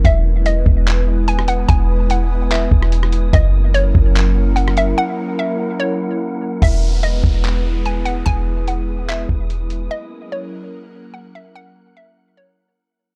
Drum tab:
HH |x---x---x---x-x-|x---x---x---x-x-|x---x---x---x-x-|----------------|
CP |--------x-------|--------x-------|--------x-------|----------------|
SD |-------------r--|-----------r-r--|-------------r--|----------------|
BD |o-----o---------|o---------o-----|o-----o---------|----------------|

HH |x---x---x---x-x-|x---x---x---x-x-|----------------|----------------|
CP |--------x-------|--------x-------|----------------|----------------|
SD |----------------|----------------|----------------|----------------|
BD |o-----o---------|o---------o-----|----------------|----------------|